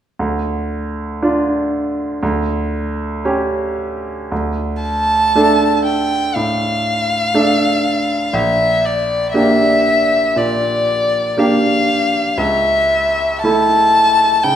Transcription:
0.19 grand piano D2
1.22 grand piano D4 F4
2.23 grand piano D2
3.25 grand piano C#4 G4
4.32 grand piano D2
4.82 violin A5
5.35 grand piano A3 D4 A4
5.86 violin G5
6.35 grand piano A2, violin F5
7.34 grand piano A3 D4 A4
8.33 grand piano A#1, violin E5
8.85 violin D5
9.34 grand piano A#3 D4 G4, violin E5
10.36 grand piano A#2, violin D5
11.37 grand piano A#3 D4 G4, violin F5
12.38 grand piano C#2, violin E5
13.43 grand piano A3 E4 A4, violin A5
14.44 grand piano C#3, violin G5

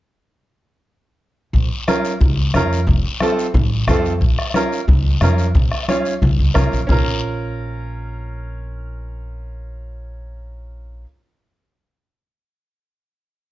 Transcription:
1.53 upright bass A#1, bombo low, long guiro
1.88 upright piano C#4 F4 A#4, bombo rim, high conga, short guiro
2.05 short guiro
2.21 upright bass C#2, bombo low, low conga, long guiro
2.54 upright bass F2, upright piano C#4 F4 A#4, bombo rim, high conga, low conga, short guiro
2.73 short guiro
2.87 upright bass F1, bombo low, low conga, long guiro
3.20 upright piano C4 F4 A4, bombo rim, high conga, short guiro
3.39 short guiro
3.54 upright bass A1, bombo low, high conga, low conga, long guiro
3.87 upright bass F2, upright piano C4 F4 A4, bombo low, bombo rim, high conga, low conga, short guiro
4.05 short guiro
4.21 upright bass A#1, bombo low, long guiro
4.39 bombo rim
4.54 upright piano C#4 F4 A#4, bombo rim, high conga, short guiro
4.72 short guiro
4.88 upright bass C#2, bombo low, high conga, low conga, long guiro
5.21 upright bass F2, upright piano C#4 F4 A#4, bombo rim, high conga, low conga, short guiro
5.38 short guiro
5.55 upright bass A#1, bombo low, low conga, long guiro
5.71 bombo rim
5.88 upright piano C#4 F4 C#5, bombo rim, high conga, short guiro
6.05 short guiro
6.22 upright bass C#2, bombo low, high conga, low conga, long guiro
6.39 upright bass C#2
6.54 upright bass C2, upright piano C#4 F4 A#4, bombo low, bombo rim, high conga, low conga, short guiro
6.72 upright bass A#1, short guiro
6.87 upright bass A#1, upright piano C#4 F4, bombo low, low conga, long guiro
6.91 upright piano A#4

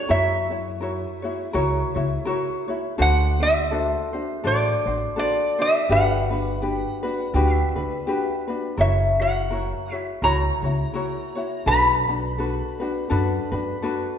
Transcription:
Already playing: resonator guitar played with a steel bar C#5
0.09 upright bass F#2, ukulele E4 F#4 A#4 C#5, resonator guitar played with a steel bar E5
0.50 ukulele E4 F#4 C#5
0.81 ukulele E4 F#4 A#4 C#5
1.22 ukulele E4 F#4 C#5
1.53 upright bass C#2, ukulele E4 F#4 A#4 C#5
1.95 upright bass C#2, ukulele E4 F#4 C#5
2.25 ukulele E4 F#4 A#4 C#5
2.68 ukulele E4 F#4 C#5
2.98 upright bass D2, ukulele D4 F#4 A4 C5, resonator guitar played with a steel bar F#5
3.40 ukulele D4 F#4 C5, resonator guitar played with a steel bar E5
3.71 ukulele D4 F#4 A4 C5
4.13 ukulele D4 F#4 C5
4.44 upright bass A1, ukulele D4 F#4 A4 C5, resonator guitar played with a steel bar D5
4.86 upright bass A1, ukulele D4 F#4 C5
5.16 ukulele D4 F#4 A4 C5, resonator guitar played with a steel bar D5
5.59 ukulele D4 F#4 C5, resonator guitar played with a steel bar E5
5.89 upright bass G1, ukulele D4 F#4 G4 B4, resonator guitar played with a steel bar F#5
6.31 ukulele D4 F#4 B4
6.62 ukulele D4 F#4 G4 B4
7.03 ukulele D4 F#4 B4
7.34 upright bass D2, ukulele D4 F#4 G4 B4
7.54 resonator guitar played with a steel bar E5
7.75 upright bass D2, ukulele D4 F#4 B4
8.07 ukulele D4 F#4 G4 B4
8.48 ukulele D4 F#4 B4
8.77 upright bass F#1, ukulele E4 F#4 A#4 C#5, resonator guitar played with a steel bar E5
9.20 ukulele E4 F#4 C#5, resonator guitar played with a steel bar F#5
9.50 ukulele E4 F#4 A#4 C#5
9.92 ukulele E4 F#4 C#5, resonator guitar played with a steel bar E5
10.22 upright bass C#2, ukulele E4 F#4 A#4 C#5, resonator guitar played with a steel bar A#5
10.63 upright bass C#2, ukulele E4 F#4 C#5
10.94 ukulele E4 F#4 A#4 C#5
11.35 ukulele E4 F#4 C#5
11.66 upright bass B1, ukulele D4 F#4 A4 B4, resonator guitar played with a steel bar B5
12.07 ukulele D4 F#4 B4
12.38 ukulele D4 F#4 A4 B4
12.80 ukulele D4 F#4 B4
13.10 upright bass F#2, ukulele D4 F#4 A4 B4
13.52 upright bass F#2, ukulele D4 F#4 B4
13.82 ukulele D4 F#4 A4 B4

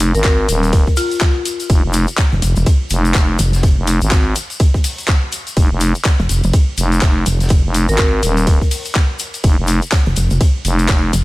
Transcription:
Already playing: fm bass F1
0.00 closed hi-hat, open hi-hat, shaker
0.15 fm bass G#1, marimba A#4, closed hi-hat, shaker
0.24 marimba A#4, kick, snare, clap, closed hi-hat, ride
0.48 fm bass D#1, closed hi-hat, open hi-hat, shaker
0.63 closed hi-hat, shaker
0.72 kick, closed hi-hat, ride, shaker
0.87 kick, closed hi-hat
0.97 marimba F4, open hi-hat, shaker
1.11 closed hi-hat, shaker
1.20 kick, snare, clap, closed hi-hat, ride, shaker
1.45 closed hi-hat, open hi-hat, shaker
1.60 closed hi-hat, shaker
1.70 fm bass F1, kick, closed hi-hat, ride, shaker
1.84 fm bass F1
1.93 closed hi-hat, open hi-hat, shaker
2.07 closed hi-hat, shaker
2.18 kick, snare, clap, closed hi-hat, ride, shaker
2.32 wobble bass F1, closed hi-hat
2.42 wobble bass F1, closed hi-hat, open hi-hat, shaker
2.56 wobble bass F1, closed hi-hat, shaker
2.66 kick, closed hi-hat, ride, shaker
2.90 fm bass F1, closed hi-hat, open hi-hat, shaker
3.05 closed hi-hat, shaker
3.14 fm bass F1, kick, snare, clap, closed hi-hat, ride, shaker
3.39 wobble bass F1, closed hi-hat, open hi-hat, shaker
3.53 snare, closed hi-hat, shaker
3.63 kick, closed hi-hat, ride, shaker
3.78 fm bass F1
3.87 closed hi-hat, open hi-hat, shaker
4.01 fm bass G#1, closed hi-hat, shaker
4.11 kick, snare, clap, closed hi-hat, ride, shaker
4.36 closed hi-hat, open hi-hat, shaker
4.50 closed hi-hat, shaker
4.60 kick, closed hi-hat, ride, shaker
4.74 kick, closed hi-hat
4.84 open hi-hat, shaker
4.98 closed hi-hat, shaker
5.08 kick, snare, clap, closed hi-hat, ride, shaker
5.32 closed hi-hat, open hi-hat, shaker
5.47 closed hi-hat, shaker
5.57 fm bass F1, kick, closed hi-hat, ride, shaker
5.71 fm bass F1
5.81 closed hi-hat, open hi-hat, shaker
5.95 closed hi-hat, shaker
6.05 kick, snare, clap, closed hi-hat, ride, shaker
6.19 wobble bass F1, closed hi-hat
6.29 wobble bass F1, closed hi-hat, open hi-hat, shaker
6.44 wobble bass F1, closed hi-hat, shaker
6.53 kick, closed hi-hat, ride, shaker
6.78 fm bass F1, closed hi-hat, open hi-hat, shaker
6.92 closed hi-hat, shaker
7.01 fm bass F1, kick, snare, clap, closed hi-hat, ride, shaker
7.26 wobble bass F1, closed hi-hat, open hi-hat, shaker
7.40 snare, closed hi-hat, shaker
7.49 closed hi-hat
7.50 kick, closed hi-hat, ride, shaker
7.65 fm bass F1
7.74 closed hi-hat, open hi-hat, shaker
7.88 fm bass G#1, marimba A#4, closed hi-hat, shaker
7.98 marimba A#4, kick, snare, clap, closed hi-hat, ride, shaker
8.23 fm bass D#1, closed hi-hat, open hi-hat, shaker
8.37 closed hi-hat, shaker
8.47 kick, closed hi-hat, ride, shaker
8.61 kick, closed hi-hat
8.71 open hi-hat, shaker
8.85 closed hi-hat, shaker
8.95 kick, snare, clap, closed hi-hat, ride, shaker
9.19 closed hi-hat, open hi-hat, shaker
9.34 closed hi-hat, shaker
9.44 fm bass F1, kick, closed hi-hat, ride, shaker
9.58 fm bass F1
9.67 closed hi-hat, open hi-hat, shaker
9.82 closed hi-hat, shaker
9.92 kick, snare, clap, closed hi-hat, ride, shaker
10.06 wobble bass F1, closed hi-hat
10.16 wobble bass F1, closed hi-hat, open hi-hat, shaker
10.30 wobble bass F1, closed hi-hat, shaker
10.41 kick, closed hi-hat, ride, shaker
10.65 fm bass F1, closed hi-hat, open hi-hat, shaker
10.79 closed hi-hat, shaker
10.89 fm bass F1, kick, snare, clap, closed hi-hat, ride, shaker
11.13 wobble bass F1, closed hi-hat, open hi-hat, shaker

